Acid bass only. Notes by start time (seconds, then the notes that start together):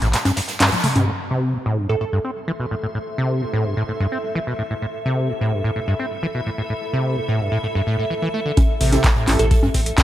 0.02 A2
0.13 A2
0.25 G2
0.37 G2
0.60 G2
0.72 A2
0.84 A3
0.96 C3
1.07 A2
1.31 C3
1.54 A2
1.66 A2
1.78 G2
1.89 A2
2.01 A2
2.13 G2
2.24 C4
2.48 E3
2.60 B2
2.71 A2
2.83 A2
2.95 A2
3.18 C3
3.42 A2
3.53 A2
3.65 G2
3.77 A2
3.88 A2
4.00 G2
4.12 C4
4.35 E3
4.47 B2
4.59 A2
4.71 A2
4.82 A2
5.06 C3
5.29 A2
5.41 A2
5.53 G2
5.64 A2
5.76 A2
5.88 G2
5.99 C4
6.23 E3
6.35 B2
6.46 A2
6.58 A2
6.70 A2
6.93 C3
7.17 A2
7.28 A2
7.40 G2
7.52 A2
7.63 A2
7.75 G2
7.87 A2
8.10 E3
8.22 E3
8.34 A3
8.46 D3
8.57 A2
8.81 C3
9.04 A2
9.16 A2
9.28 G2
9.39 A2
9.51 A2
9.63 G2
9.74 C4
9.98 E3